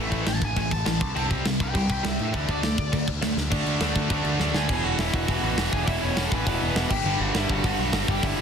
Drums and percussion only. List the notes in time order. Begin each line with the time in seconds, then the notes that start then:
0.12 kick, crash
0.27 snare, crash
0.41 kick, crash
0.56 kick, crash
0.71 kick, crash
0.86 snare, crash
1.01 kick, crash
1.16 crash
1.31 kick, crash
1.46 snare, crash
1.60 kick, crash
1.75 kick, crash
1.89 kick, crash
2.05 snare, crash
2.19 crash
2.34 kick, crash
2.48 kick, crash
2.63 snare, crash
2.78 kick, crash
2.93 kick, crash
3.08 kick, crash
3.22 snare, crash
3.37 snare
3.52 kick, crash
3.66 crash
3.81 snare, crash
3.96 kick, crash
4.10 kick, crash
4.25 crash
4.40 snare
4.54 snare
4.69 kick, crash
4.99 snare, open hi-hat
5.14 kick
5.28 kick, open hi-hat
5.58 snare, open hi-hat
5.73 kick
5.88 kick, open hi-hat
6.17 snare, open hi-hat
6.32 kick
6.47 kick, open hi-hat
6.76 snare, open hi-hat
6.90 kick, crash
7.35 snare, open hi-hat
7.49 kick
7.64 kick, open hi-hat
7.93 snare, open hi-hat
8.08 kick
8.23 kick, open hi-hat